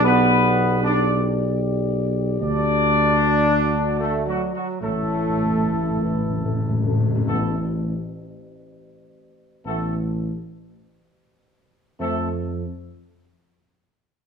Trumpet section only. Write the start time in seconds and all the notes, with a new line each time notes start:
0.05 B4
0.84 D5
2.41 D5
4.00 A4
4.27 F#4
4.54 F#4
4.82 A4
7.28 A4
9.66 A4
12.00 A4